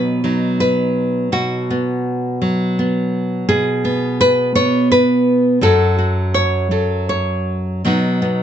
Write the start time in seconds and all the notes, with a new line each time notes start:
Already playing: B2 F#3 B3 D#4 B4
0.24 F#3 D#4
0.60 B4
1.32 B2 F#4
1.70 B3
2.42 F#3
2.79 B3
3.49 B2 G#4
3.85 B3
4.21 B4
4.55 B3 C#5
4.92 B4
5.61 F#2 F#3 F#4 A4
5.98 F#4
6.34 C#5
6.71 F#3 A4
7.09 C#5
7.85 B2 F#3 B3 D#4 F#4
8.22 B3